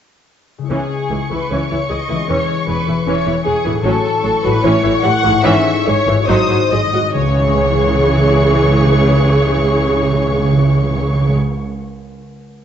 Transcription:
0.59 harp C#3 G#3
0.64 harp E4 G#4
0.70 double bass section C#2, cello section C#2, viola section E3 C#4, violin section G#4 C#6
1.10 double bass section C#2, cello section C#2, viola section E3 G#4
1.30 double bass section C#2, cello section C#2, viola section E3 E4, violin section B4
1.50 double bass section C#2, cello section C#2, viola section E3 C#4, violin section C#5
1.70 double bass section C#2, cello section C#2, viola section E3 E4
1.90 double bass section C#2, cello section C#2, viola section E3 G#4, violin section D#5
2.09 double bass section C#2, cello section C#2, viola section E3 E4, harp E3
2.16 harp G#3
2.20 harp C#4
2.25 viola section E3 C#4, harp G#4
2.29 double bass section E1, cello section E2, violin section C#5
2.67 double bass section E1, cello section E2, viola section E3 G#4, violin section B4
2.87 double bass section E1, cello section E2, viola section E3 E4
3.06 double bass section E1, cello section E2, viola section E3 C#4, violin section C#5
3.26 double bass section E1, cello section E2, viola section E3 E4
3.45 double bass section E1, cello section E2, viola section E3 G#4, violin section G#4
3.65 double bass section E1, cello section E2, harp A2, viola section E3 E4
3.71 harp F#3
3.76 harp C#4
3.80 harp A4
3.84 double bass section A1, cello section A2, viola section F#3 C#4, violin section A4 C#6
4.23 double bass section A1, cello section A2, viola section F#3 A4
4.44 double bass section A1, cello section A2, harp A2, viola section F#3 F#4, violin section B4
4.51 harp G3
4.55 harp E4
4.60 viola section E3, harp A4
4.64 double bass section A1, cello section A2, viola section C#4, violin section C#5
4.83 double bass section A1, cello section A2, viola section E3 E4
5.04 double bass section A1, cello section A2, viola section E3 G4, violin section F#5
5.24 double bass section A1, harp G#2, cello section A2, viola section E3 E4
5.32 harp G#3
5.36 harp E4
5.41 viola section E3 C#4, harp C#5, violin section E5
5.45 double bass section G#1, timpani G#2, cello section G#2
5.86 double bass section G#1, cello section G#2, viola section E3 G#4, violin section C#5
6.08 double bass section G#1, cello section G#2, harp G#2, viola section E3 E4
6.15 harp G#3
6.19 harp F#4
6.23 harp D#5
6.28 double bass section G#1, cello section G#2, viola section F#3 D#4, violin section C5 D#6
6.45 timpani G#2
6.49 double bass section G#1, cello section G#2, timpani G#2, viola section F#3 F#4
6.61 timpani G#2
6.68 double bass section G#1, timpani G#2, cello section G#2, viola section F#3 G#4
6.72 violin section D#5
6.77 timpani G#2
6.85 timpani G#2
6.92 double bass section G#1, cello section G#2, timpani G#2, viola section F#3 F#4
7.02 timpani G#2
7.14 double bass section C#2, harp C#3, cello section C#3, timpani C#3, viola section E3 G#4, violin section C#5 C#6
7.21 timpani C#3, harp G#3
7.28 timpani C#3, harp C#4
7.34 timpani C#3, harp G#4
7.41 timpani C#3, harp E5
7.47 timpani C#3, harp G#5
7.55 timpani C#3
7.61 timpani C#3
7.67 timpani C#3
7.73 timpani C#3
7.80 timpani C#3
7.86 timpani C#3
7.92 timpani C#3
7.99 timpani C#3
8.05 timpani C#3
8.11 timpani C#3
8.17 timpani C#3
8.23 timpani C#3
8.30 timpani C#3
8.36 timpani C#3
8.42 timpani C#3
8.49 timpani C#3
8.55 timpani C#3
8.61 timpani C#3
8.68 timpani C#3
8.74 timpani C#3
8.81 timpani C#3
8.87 timpani C#3
8.93 timpani C#3
9.00 timpani C#3
9.06 timpani C#3
9.13 timpani C#3
9.19 timpani C#3
9.25 timpani C#3
9.31 timpani C#3
9.37 timpani C#3
9.44 timpani C#3
9.50 timpani C#3
9.56 timpani C#3
9.63 timpani C#3
9.69 timpani C#3
9.76 timpani C#3
9.82 timpani C#3
9.88 timpani C#3
9.94 timpani C#3
10.01 timpani C#3
10.07 timpani C#3
10.13 timpani C#3
10.20 timpani C#3
10.26 timpani C#3
10.32 timpani C#3
10.38 timpani C#3
10.45 timpani C#3
10.51 timpani C#3
10.58 timpani C#3
10.64 timpani C#3
10.70 timpani C#3
10.77 timpani C#3
10.83 timpani C#3
10.89 timpani C#3
10.96 timpani C#3
11.02 timpani C#3
11.09 timpani C#3
11.16 timpani C#3
11.22 timpani C#3
11.29 timpani C#3
11.35 timpani C#3

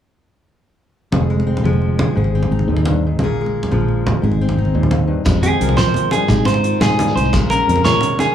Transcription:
1.12 fingered electric bass F1, steel-string acoustic guitar F2 G#4, muted conga, high conga, low conga
1.22 low conga
1.30 steel-string acoustic guitar G#3, low conga
1.40 high conga
1.47 steel-string acoustic guitar C4
1.57 muted conga, low conga
1.64 fingered electric bass F1, steel-string acoustic guitar F3 G#3, high conga
1.73 low conga
1.82 low conga
1.99 steel-string acoustic guitar G#4, muted conga, high conga, low conga
2.15 fingered electric bass G#1, steel-string acoustic guitar G#2 G#4, low conga
2.24 high conga, low conga
2.35 steel-string acoustic guitar C4
2.43 muted conga, low conga
2.51 fingered electric bass G#1, steel-string acoustic guitar D#4
2.59 high conga
2.68 fingered electric bass D#2, steel-string acoustic guitar F2
2.77 low conga
2.86 steel-string acoustic guitar G2, muted conga, high conga
3.07 steel-string acoustic guitar G#2
3.19 fingered electric bass A#1, steel-string acoustic guitar A#2, muted conga, high conga, low conga
3.24 steel-string acoustic guitar G#4
3.29 low conga
3.37 low conga
3.41 steel-string acoustic guitar G#3
3.46 high conga
3.63 muted conga, low conga
3.71 fingered electric bass A#1, steel-string acoustic guitar F3 G#3, high conga
3.81 low conga
3.89 low conga
4.07 muted steel-string acoustic guitar stroke, muted conga, high conga, low conga
4.22 fingered electric bass G#1, steel-string acoustic guitar G#2 G#4, low conga
4.32 high conga, low conga
4.41 steel-string acoustic guitar C4
4.49 muted conga, low conga
4.57 fingered electric bass G#1, steel-string acoustic guitar D#4
4.65 high conga
4.74 fingered electric bass D#2, steel-string acoustic guitar A#2
4.83 low conga
4.91 steel-string acoustic guitar G#2, muted conga, high conga
5.07 steel-string acoustic guitar G2
5.25 steel-string acoustic guitar F2 G#3, fingered electric bass F2, kick, closed hi-hat, muted conga, low conga, shekere
5.43 steel-string acoustic guitar C4, clean electric guitar G#4, closed hi-hat, high conga
5.61 fingered electric bass C2, steel-string acoustic guitar F3 A#4, closed hi-hat
5.69 muted conga, low conga
5.77 fingered electric bass F3, clean electric guitar C5, snare, closed hi-hat, low conga, shekere
5.94 closed hi-hat, high conga
6.11 steel-string acoustic guitar G2, clean electric guitar G#4, closed hi-hat, muted conga, low conga, shekere
6.28 steel-string acoustic guitar G#2 C4, fingered electric bass G#2, kick, closed hi-hat, low conga, shekere
6.45 steel-string acoustic guitar D#4, clean electric guitar C5, snare, closed hi-hat, high conga, low conga
6.54 muted conga
6.63 steel-string acoustic guitar D#3 F4, closed hi-hat
6.80 steel-string acoustic guitar F2, fingered electric bass G#2, clean electric guitar G#4, snare, closed hi-hat, low conga, shekere
6.91 shekere
6.99 steel-string acoustic guitar G2, closed hi-hat, muted conga, high conga
7.07 shekere
7.15 fingered electric bass C2, steel-string acoustic guitar G#2, clean electric guitar C5, closed hi-hat, shekere
7.25 shekere
7.33 fingered electric bass A#1, steel-string acoustic guitar A#2 G#3, kick, closed hi-hat, muted conga, low conga, shekere
7.50 steel-string acoustic guitar C#4, clean electric guitar A#4, closed hi-hat, high conga
7.68 fingered electric bass F2, steel-string acoustic guitar F3 A#4, closed hi-hat
7.76 muted conga, low conga
7.84 fingered electric bass A#2, steel-string acoustic guitar C#3, clean electric guitar C#5, snare, closed hi-hat, low conga, shekere
8.01 steel-string acoustic guitar C3, closed hi-hat, high conga
8.19 clean electric guitar G#4, muted steel-string acoustic guitar stroke, closed hi-hat, muted conga, low conga, shekere

